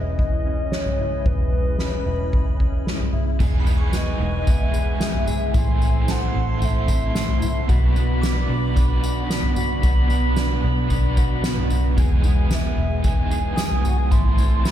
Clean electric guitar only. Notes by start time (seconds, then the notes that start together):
Already playing: E2 G#3 C#4 E4
0.19 E3
0.45 C#4
0.73 G#3
1.00 E4
1.27 E2
1.53 G#3
1.80 C#4
2.06 E4
2.32 E3
2.59 C#4
2.86 G#3
3.13 E4
3.40 E2 G#4
3.67 G#3
3.94 B3
4.21 G#3
4.47 B3
4.74 G#4
5.01 G#3
5.27 G#4
5.54 A2 E4
5.81 A3
6.07 C4
6.34 A3
6.61 C4
6.88 E4
7.15 A3
7.42 E4
7.68 B2 F#4
7.95 B3
8.22 D4
8.49 B3
8.76 D4
9.03 F#4
9.30 B3
9.57 F#4
9.83 B2 F#4
10.10 B3
10.38 D4
10.64 B3
10.91 D4
11.18 F#4
11.45 B3
11.71 F#4
11.98 E2 G#4
12.25 G#3
12.51 B3
12.77 G#3
13.05 B3
13.31 G#4
13.58 G#3
13.85 F#4
13.97 G#4
14.11 A2 E4
14.37 A3
14.64 C4